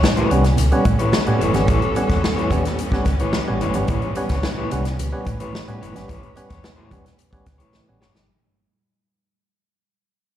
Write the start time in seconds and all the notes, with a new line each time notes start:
Already playing: E3 G3 B3 C#4
0.03 B3 C#4, muted clean electric guitar stroke, snare, high conga
0.16 A2 E3 G4 B4 C#5, closed hi-hat
0.30 C2 G3 B3 C#4, muted clean electric guitar stroke, closed hi-hat
0.44 muted clean electric guitar stroke, snare, closed hi-hat
0.57 C#2 A4, muted clean electric guitar stroke, closed hi-hat, low conga
0.72 G3 B3 C#4, muted clean electric guitar stroke, closed hi-hat
0.85 A2, kick, closed hi-hat, muted conga
0.99 A2 E3 G4 B4 C#5, closed hi-hat
1.12 snare, high conga
1.26 A2 G3 B3 C#4, muted clean electric guitar stroke, closed hi-hat
1.39 F#1 A2 E3 G4 B4 C#5, closed hi-hat
1.53 G1 G3 B3 C#4, muted clean electric guitar stroke, snare, closed hi-hat, high conga
1.67 A1 A2 E3 G4 B4 C#5, kick, closed hi-hat, muted conga
1.82 closed hi-hat
1.93 G3 B3 C#4, muted clean electric guitar stroke, closed hi-hat, muted conga
2.08 E2 B3 C#4 G4 B4 C#5, kick, snare, closed hi-hat
2.21 B3 C#4, muted clean electric guitar stroke, snare, high conga
2.36 A2 E3 G4 B4 C#5, muted fingered electric bass stroke, closed hi-hat
2.50 E2 G3 B3 C#4, muted clean electric guitar stroke, kick, closed hi-hat, low conga
2.65 muted clean electric guitar stroke, snare, closed hi-hat
2.79 muted clean electric guitar stroke, closed hi-hat
2.92 G3 B3 C#4, muted fingered electric bass stroke, muted clean electric guitar stroke, kick, snare
3.05 C#2, kick, snare, closed hi-hat, muted conga
3.20 A2 E3 G4 B4 C#5, closed hi-hat
3.33 snare, high conga
3.48 A1 G3 B3 C#4, muted clean electric guitar stroke
3.61 F#1 A2 E3 G4 B4 C#5, closed hi-hat
3.74 G1 G3 B3 C#4, muted clean electric guitar stroke, closed hi-hat, high conga
3.87 A1 A2 E3 G4 B4 C#5, kick, closed hi-hat, muted conga
4.02 closed hi-hat
4.15 G3 B3 C#4, muted clean electric guitar stroke, closed hi-hat, muted conga
4.29 C#2 B3 C#4 G4 B4 C#5, kick, snare, closed hi-hat
4.43 B3 C#4, muted clean electric guitar stroke, snare, high conga
4.58 A2 E3 G4 B4 C#5
4.71 C2 G3 B3 C#4, muted clean electric guitar stroke, closed hi-hat
4.85 muted clean electric guitar stroke, snare, closed hi-hat
4.97 C#2 B4, muted clean electric guitar stroke, closed hi-hat, low conga
5.12 G3 B3 C#4, muted clean electric guitar stroke
5.25 A2, kick, closed hi-hat, muted conga
5.40 A2 E3 G4 B4 C#5, closed hi-hat
5.53 snare, high conga
5.68 A2 G3 B3 C#4, muted clean electric guitar stroke, closed hi-hat
5.81 F#1 A2 E3 G4 B4 C#5, closed hi-hat
5.94 G1 G3 B3 C#4, muted clean electric guitar stroke, snare, closed hi-hat, high conga
6.08 A1 A2 E3 G4 B4 C#5, kick, closed hi-hat, muted conga
6.23 closed hi-hat
6.35 G3 B3 C#4, muted clean electric guitar stroke, closed hi-hat, muted conga
6.50 E2 B3 C#4 G4 B4 C#5, kick, snare, closed hi-hat
6.63 B3 C#4, muted clean electric guitar stroke, snare, high conga
6.76 A2 E3 G4 B4 C#5, muted fingered electric bass stroke
6.90 E2 G3 B3 C#4, muted clean electric guitar stroke, kick, closed hi-hat, low conga
7.04 muted clean electric guitar stroke, snare, closed hi-hat
7.18 muted clean electric guitar stroke, closed hi-hat, muted conga
7.31 G3 B3 C#4, muted clean electric guitar stroke, muted fingered electric bass stroke, kick, closed hi-hat
7.46 C#2, kick, snare, closed hi-hat, muted conga
7.58 A2 E3 G4 B4 C#5, closed hi-hat
7.73 A2 E3, snare, high conga
7.86 A1 G3 B3 C#4, muted clean electric guitar stroke
8.01 F#1 B3 C#4 G4 B4 C#5, snare
8.14 G1, muted clean electric guitar stroke, snare, high conga